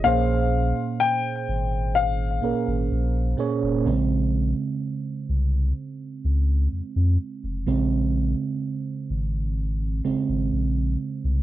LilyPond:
<<
  \new Staff \with { instrumentName = "Grand piano" } { \time 4/4 \key bes \dorian \tempo 4 = 63 f''4 g''4 f''4. r8 | r1 | r1 | }
  \new Staff \with { instrumentName = "FM electric piano" } { \time 4/4 \key bes \dorian <bes, bes des' aes' c''>4. r4 <bes, bes des' aes' bes'>8 r8 <bes, bes des' aes' des''>8 | <des aes c'>8 r2. r8 | <des aes c'>8 r2 <des aes c'>8 r4 | }
  \new Staff \with { instrumentName = "Sub bass" } { \clef bass \time 4/4 \key bes \dorian bes,,8. r8. aes,,4 aes,,16 aes,,16 bes,,8 r16 f,,16 | bes,,8. r8. c,8 r8 des,8 f,16 f,16 r16 f,,16 | bes,,8. r8. aes,,4 aes,,16 aes,,16 bes,,8 r16 c,16 | }
>>